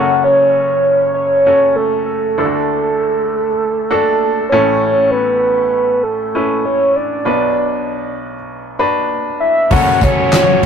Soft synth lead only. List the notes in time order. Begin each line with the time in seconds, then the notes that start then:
Already playing: F#5
0.24 C#5
1.14 C#5
1.76 A4
2.06 A4
4.49 C#5
5.11 B4
6.03 A4
6.65 C#5
6.96 D5
9.40 E5
9.72 F#5
10.03 C#5